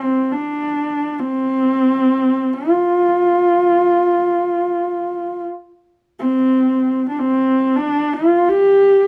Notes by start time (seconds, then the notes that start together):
Already playing: C4
0.32 D4
1.19 C4
2.54 F4
6.19 C4
7.09 D4
7.19 C4
7.75 D4
8.13 F4
8.49 G4